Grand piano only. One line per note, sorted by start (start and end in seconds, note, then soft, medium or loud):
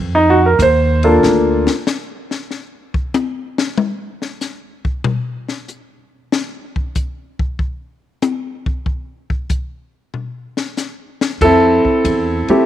0.15 0.38 D#4 medium
0.30 0.44 F#4 medium
0.46 0.57 A#4 medium
0.62 1.11 C5 medium
1.04 1.68 A#3 medium
1.04 1.68 D4 soft
1.04 1.68 F4 medium
1.04 1.68 A4 medium
11.42 12.48 C4 medium
11.42 12.49 E4 medium
11.42 12.65 A4 medium
12.50 12.66 A3 medium
12.50 12.66 C4 medium
12.50 12.66 E4 medium
12.50 12.66 G4 medium